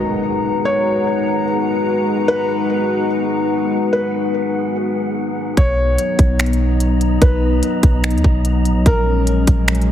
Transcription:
0.00 5.53 G#3 medium
0.00 1.18 A#3 medium
0.00 8.82 B3 medium
0.00 0.66 C#4 medium
0.00 5.53 D#4 medium
0.00 5.53 F#4 medium
0.00 5.53 G#4 medium
0.00 0.91 A#4 medium
0.00 5.53 B4 medium
0.00 5.53 F#5 medium
0.00 5.53 A#5 medium
0.00 impact medium
0.65 1.43 C#5 medium
2.28 3.06 B4 loud
3.93 5.53 B4 medium
5.57 5.97 B1 loud
5.57 9.92 F#3 medium
5.57 8.83 B3 medium
5.57 8.83 D#4 medium
5.57 6.35 C#5 loud
5.57 8.83 D#5 medium
5.57 8.83 A#5 medium
5.57 kick loud
5.57 closed hi-hat medium
5.98 closed hi-hat medium
6.19 7.18 B1 loud
6.19 kick loud
6.19 closed hi-hat medium
6.39 finger snap loud
6.39 closed hi-hat medium
6.46 closed hi-hat medium
6.53 closed hi-hat soft
6.80 closed hi-hat medium
7.01 closed hi-hat medium
7.22 7.61 B1 loud
7.22 8.00 B4 loud
7.22 kick loud
7.22 closed hi-hat medium
7.63 closed hi-hat medium
7.83 8.16 B1 loud
7.83 kick loud
7.83 closed hi-hat medium
8.04 finger snap loud
8.04 closed hi-hat medium
8.11 8.24 D#2 loud
8.11 closed hi-hat medium
8.18 closed hi-hat soft
8.24 8.67 B1 loud
8.24 kick medium
8.45 closed hi-hat medium
8.65 8.77 A#1 loud
8.65 closed hi-hat medium
8.76 8.85 B1 medium
8.86 9.45 A#1 loud
8.86 9.92 G#3 medium
8.86 9.92 A#3 medium
8.86 9.92 C#4 medium
8.86 9.92 G#4 medium
8.86 9.65 A#4 loud
8.86 9.92 C#5 medium
8.86 kick loud
8.86 closed hi-hat medium
9.27 closed hi-hat medium
9.47 9.92 A#1 loud
9.47 kick loud
9.47 closed hi-hat medium
9.68 finger snap loud
9.68 closed hi-hat medium
9.75 closed hi-hat soft
9.82 closed hi-hat soft

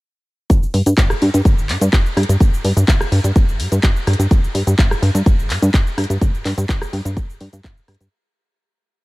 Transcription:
0.50 0.66 G1 loud
0.50 kick loud
0.50 closed hi-hat medium
0.50 shaker medium
0.63 shaker soft
0.74 0.82 G2 loud
0.74 open hi-hat loud
0.86 0.94 G2 loud
0.86 closed hi-hat medium
0.86 shaker medium
0.97 1.14 G1 loud
0.97 kick loud
0.97 clap loud
0.97 closed hi-hat soft
0.97 shaker medium
1.10 cross-stick medium
1.10 shaker soft
1.22 1.30 G2 loud
1.22 open hi-hat loud
1.34 1.42 G2 loud
1.34 closed hi-hat medium
1.34 shaker medium
1.45 1.71 G1 medium
1.45 kick loud
1.45 closed hi-hat medium
1.45 shaker medium
1.58 shaker soft
1.69 1.77 G2 loud
1.69 clap medium
1.69 open hi-hat loud
1.81 1.89 G2 loud
1.81 closed hi-hat medium
1.81 shaker medium
1.93 2.01 G1 medium
1.93 kick loud
1.93 clap loud
1.93 closed hi-hat medium
1.93 shaker medium
2.06 shaker soft
2.17 2.25 G2 medium
2.17 cross-stick medium
2.17 open hi-hat loud
2.23 closed hi-hat medium
2.29 2.37 G2 medium
2.29 closed hi-hat medium
2.29 shaker medium
2.40 2.52 G1 loud
2.40 kick loud
2.40 closed hi-hat medium
2.40 shaker medium
2.54 shaker soft
2.64 2.73 G2 loud
2.64 open hi-hat loud
2.77 2.84 G2 loud
2.77 closed hi-hat medium
2.77 shaker medium
2.88 3.04 G1 loud
2.88 kick loud
2.88 clap loud
2.88 closed hi-hat soft
2.88 shaker medium
3.01 cross-stick medium
3.01 shaker soft
3.12 3.20 G2 loud
3.12 open hi-hat loud
3.24 3.32 G2 loud
3.24 closed hi-hat medium
3.24 shaker medium
3.36 3.61 G1 medium
3.36 kick loud
3.36 closed hi-hat medium
3.36 shaker medium
3.49 shaker soft
3.59 3.68 G2 loud
3.59 open hi-hat loud
3.72 3.79 G2 loud
3.72 closed hi-hat medium
3.72 shaker medium
3.83 3.91 G1 medium
3.83 kick loud
3.83 clap loud
3.83 closed hi-hat medium
3.83 shaker medium
3.96 shaker soft
4.07 4.15 G2 medium
4.07 cross-stick medium
4.07 open hi-hat loud
4.13 closed hi-hat medium
4.19 4.27 G2 medium
4.19 closed hi-hat medium
4.19 shaker medium
4.31 4.47 G1 loud
4.31 kick loud
4.31 closed hi-hat medium
4.31 shaker medium
4.44 shaker soft
4.55 4.63 G2 loud
4.55 open hi-hat loud
4.67 4.75 G2 loud
4.67 closed hi-hat medium
4.67 shaker medium
4.79 4.95 G1 loud
4.79 kick loud
4.79 clap loud
4.79 closed hi-hat soft
4.79 shaker medium
4.91 cross-stick medium
4.91 shaker soft
5.02 5.10 G2 loud
5.02 open hi-hat loud
5.15 5.22 G2 loud
5.15 closed hi-hat medium
5.15 shaker medium
5.26 5.51 G1 medium
5.26 kick loud
5.26 closed hi-hat medium
5.26 shaker medium
5.39 shaker soft
5.50 5.58 G2 loud
5.50 clap medium
5.50 open hi-hat loud
5.62 5.70 G2 loud
5.62 closed hi-hat medium
5.62 shaker medium
5.74 5.82 G1 medium
5.74 kick loud
5.74 clap loud
5.74 closed hi-hat medium
5.74 shaker medium
5.87 shaker soft
5.97 6.06 G2 medium
5.97 cross-stick medium
5.97 open hi-hat loud
6.04 closed hi-hat medium
6.10 6.18 G2 medium
6.10 closed hi-hat soft
6.10 shaker medium
6.21 6.33 G1 loud
6.21 kick loud
6.21 closed hi-hat medium
6.21 shaker medium
6.35 shaker soft
6.45 6.53 G2 loud
6.45 clap medium
6.45 open hi-hat loud
6.58 6.65 G2 loud
6.58 closed hi-hat medium
6.58 shaker medium
6.69 6.85 G1 loud
6.69 kick loud
6.69 clap loud
6.69 closed hi-hat soft
6.69 shaker medium
6.82 cross-stick medium
6.82 shaker soft
6.93 7.01 G2 loud
6.93 open hi-hat loud
7.05 7.18 G2 loud
7.05 closed hi-hat medium
7.05 shaker medium
7.17 7.29 G1 medium
7.17 kick loud
7.17 closed hi-hat medium
7.17 shaker medium
7.29 7.38 G2 soft
7.29 shaker soft
7.41 7.49 G2 loud
7.41 open hi-hat loud
7.53 7.61 G2 medium
7.53 closed hi-hat medium
7.53 shaker medium
7.64 kick loud
7.64 clap loud
7.64 closed hi-hat medium
7.64 shaker medium
7.77 shaker soft
7.88 7.96 G2 medium
7.88 cross-stick medium
7.88 open hi-hat loud
7.94 closed hi-hat medium
8.01 8.08 G2 medium
8.01 closed hi-hat soft
8.01 shaker medium

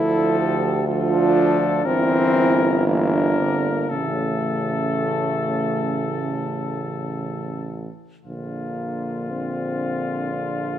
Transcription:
0.00 1.80 D2 medium
0.00 0.83 F3 medium
0.00 0.60 E4 loud
0.00 0.38 A4 medium
0.00 0.82 A4 medium
0.38 0.86 G4 medium
0.86 1.84 F3 medium
0.86 1.88 D4 loud
0.86 1.67 F4 loud
0.86 1.87 A4 medium
1.84 3.86 G1 loud
1.84 2.85 E3 loud
1.84 2.86 C4 loud
1.84 2.34 E4 medium
1.84 2.86 A#4 medium
2.35 2.85 E4 medium
2.87 3.37 E3 medium
2.87 3.15 A#3 loud
2.87 3.90 D4 medium
2.87 3.91 A#4 medium
3.13 3.40 D4 medium
3.38 3.90 D3 medium
3.38 3.68 C4 medium
3.66 3.96 A#3 medium
3.89 7.89 A1 medium
3.89 7.92 C#3 medium
3.89 7.67 C#4 medium
3.89 7.92 A4 medium
3.94 7.18 A3 loud
8.24 10.79 A#1 medium
8.24 10.79 D3 medium
8.24 9.32 A#3 medium
8.24 10.79 F4 medium
9.31 10.33 C4 medium
10.32 10.79 D4 medium
10.32 10.79 F4 medium

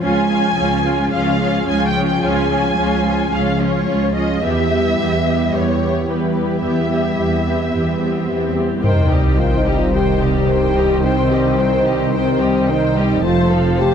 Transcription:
0.03 0.52 C#2 medium
0.03 4.40 F3 medium
0.03 0.29 C#4 medium
0.03 4.44 C#4 medium
0.03 0.29 F4 medium
0.03 4.40 F4 medium
0.03 4.44 G#4 medium
0.03 1.09 G#5 medium
0.30 0.57 C#4 soft
0.30 0.57 F4 soft
0.58 1.07 C#2 medium
0.58 0.84 C#4 medium
0.58 0.84 F4 medium
0.85 1.12 C#4 soft
0.85 1.12 F4 soft
1.12 1.62 C#2 medium
1.12 1.40 C#4 medium
1.12 1.40 F4 medium
1.12 1.66 F5 medium
1.41 1.66 C#4 soft
1.41 1.67 F4 medium
1.68 2.17 C#2 medium
1.68 1.94 C#4 soft
1.68 1.94 F4 soft
1.68 1.86 G#5 medium
1.88 2.05 G5 medium
1.95 2.22 C#4 soft
1.95 2.21 F4 soft
2.07 2.24 G5 medium
2.23 2.72 C#2 medium
2.23 2.50 C#4 medium
2.23 2.49 F4 medium
2.23 3.33 G#5 medium
2.51 2.76 C#4 soft
2.51 2.76 F4 soft
2.77 3.27 C#2 medium
2.77 3.05 C#4 medium
2.77 3.05 F4 soft
3.06 3.32 C#4 soft
3.06 3.32 F4 soft
3.33 3.82 C#2 medium
3.33 3.58 C#4 soft
3.33 3.59 F4 soft
3.33 3.61 F5 medium
3.60 3.86 C#4 soft
3.60 3.86 F4 soft
3.60 4.15 C#5 medium
3.87 4.37 C#2 medium
3.87 4.13 C#4 soft
3.87 4.14 F4 soft
4.15 4.42 C#4 soft
4.15 4.42 F4 soft
4.15 4.42 D#5 medium
4.43 4.92 E2 medium
4.43 8.82 G3 medium
4.43 4.69 B3 soft
4.43 8.84 B3 medium
4.43 8.84 E4 medium
4.43 4.69 G4 soft
4.43 8.84 G4 medium
4.43 5.53 E5 medium
4.70 4.97 B3 soft
4.70 4.97 G4 soft
4.98 5.47 E2 soft
4.98 5.25 B3 soft
4.98 5.24 G4 soft
5.26 5.52 B3 soft
5.26 5.52 G4 soft
5.53 6.02 E2 soft
5.53 5.80 B3 soft
5.53 5.80 G4 soft
5.53 6.08 C#5 medium
5.81 6.07 B3 soft
5.81 6.07 G4 soft
6.08 6.57 E2 soft
6.08 6.35 B3 soft
6.08 6.35 G4 soft
6.08 6.64 B4 soft
6.36 6.62 B3 soft
6.36 6.62 G4 soft
6.63 7.12 E2 soft
6.63 6.89 B3 soft
6.63 6.89 G4 soft
6.63 8.52 E5 medium
6.63 swell soft
6.91 7.17 B3 soft
6.91 7.17 G4 soft
7.18 7.67 E2 soft
7.18 7.44 B3 soft
7.18 7.45 G4 soft
7.46 7.71 B3 soft
7.46 7.71 G4 soft
7.73 8.23 E2 soft
7.73 7.99 B3 soft
7.73 7.99 G4 soft
8.00 8.27 B3 soft
8.00 8.26 G4 soft
8.28 8.78 E2 soft
8.28 8.54 B3 soft
8.28 8.54 G4 soft
8.55 8.83 B3 soft
8.55 8.83 G4 soft
8.83 13.20 C2 soft
8.83 13.20 C2 medium
8.83 9.09 D#3 soft
8.83 13.20 D#3 medium
8.83 13.20 G3 medium
8.83 13.20 C4 medium
8.83 13.21 C4 soft
8.83 13.20 D#4 medium
8.83 9.35 D#4 medium
8.83 13.20 C5 medium
8.83 9.10 C5 medium
8.83 9.10 G5 soft
8.83 sub drop medium
9.11 9.39 G3 soft
9.11 9.39 G4 soft
9.11 9.39 D#5 soft
9.38 9.66 D#3 soft
9.38 9.56 F4 medium
9.38 9.66 C5 soft
9.38 9.67 G5 soft
9.58 9.76 D#4 medium
9.65 9.94 G3 soft
9.65 9.93 G4 soft
9.65 9.94 D#5 soft
9.77 9.94 F4 medium
9.93 10.20 D#3 soft
9.93 11.04 G4 medium
9.93 10.19 C5 soft
9.93 10.19 G5 soft
10.21 10.49 G3 soft
10.21 10.49 G4 soft
10.21 10.49 D#5 soft
10.48 10.76 D#3 soft
10.48 10.76 C5 soft
10.48 10.77 G5 soft
10.75 11.03 G3 soft
10.75 11.04 G4 soft
10.75 11.04 D#5 soft
11.04 11.29 D#3 medium
11.04 12.13 C4 medium
11.04 11.30 C5 medium
11.04 11.29 G5 medium
11.31 11.59 G3 soft
11.31 11.59 G4 soft
11.31 11.59 D#5 soft
11.58 11.86 D#3 soft
11.58 11.86 C5 soft
11.58 11.86 G5 medium
11.86 12.14 G3 soft
11.86 12.14 G4 soft
11.86 12.14 D#5 medium
12.14 12.40 D#3 medium
12.14 12.68 C4 medium
12.14 12.39 C5 soft
12.14 12.40 G5 soft
12.41 12.69 G3 soft
12.41 12.69 G4 soft
12.41 12.69 D#5 soft
12.68 12.97 D#3 soft
12.68 13.25 D#4 medium
12.68 12.96 C5 medium
12.68 12.97 G5 soft
12.96 13.24 G3 soft
12.96 13.24 G4 medium
12.96 13.24 D#5 soft
13.23 13.94 F1 medium
13.23 13.94 F2 medium
13.23 13.94 F3 medium
13.23 13.50 A3 medium
13.23 13.94 C4 medium
13.23 13.94 F4 medium
13.23 13.79 F4 medium
13.23 13.94 C5 medium
13.23 13.50 C5 medium
13.23 13.49 A5 medium
13.51 13.79 F3 medium
13.51 13.79 A4 medium
13.51 13.79 F5 medium
13.79 13.94 A3 medium
13.79 13.94 G4 medium
13.79 13.94 C5 medium
13.79 13.94 A5 medium

